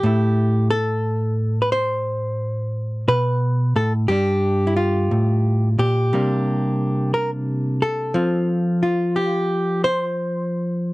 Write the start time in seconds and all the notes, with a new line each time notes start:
Already playing: G4
0.03 A2 A3 E4
0.70 A4
1.62 B4
1.72 C5
3.08 B2 B4
3.76 A2 A4
4.08 G2 G3 D4 G4
4.67 E4
4.77 F4
5.11 A2
5.79 A#2 G4
6.13 C3 G3 A#3 D4
7.14 A#4
7.82 A4
8.14 F3 C4 F4
8.83 F4
9.16 G4
9.84 C5